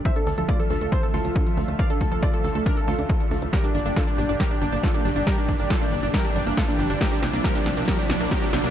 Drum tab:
HH |xxoxxxoxxxoxxxox|xxoxxxoxxxoxxxox|xxoxxxoxxxoxxxox|xxoxxxoxxxoxxxox|
SD |----------------|----------------|o---o---o---o---|o---o---o---o---|
BD |o---o---o---o---|o-o-o---o---o---|o---o---o---o---|o-o-o---o---o---|

HH |xxoxxxoxxxoxxxox|
SD |o-o-o-o-o-o-o-o-|
BD |o---o---o---o---|